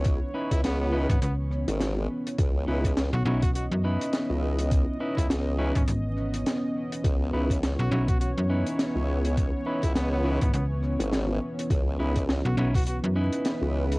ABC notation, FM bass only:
X:1
M:4/4
L:1/16
Q:"Swing 16ths" 1/4=103
K:C#m
V:1 name="FM bass" clef=bass
z6 z G,,, C,,3 z4 z | z4 z B,,, B,,,3 F,,2 z4 z | z6 z G,,, G,,,4 z4 | z4 z B,,, B,,,3 F,,2 z4 z |
z6 z G,,, C,,3 z4 z | z4 z B,,, B,,,3 F,,2 z4 z |]